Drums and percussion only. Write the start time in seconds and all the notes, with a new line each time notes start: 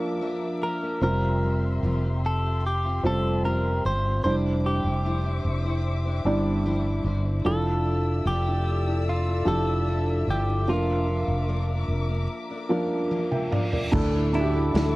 13.11 high tom
13.32 mid tom
13.52 mid tom
13.73 floor tom
13.93 kick, crash
14.34 ride
14.75 snare, ride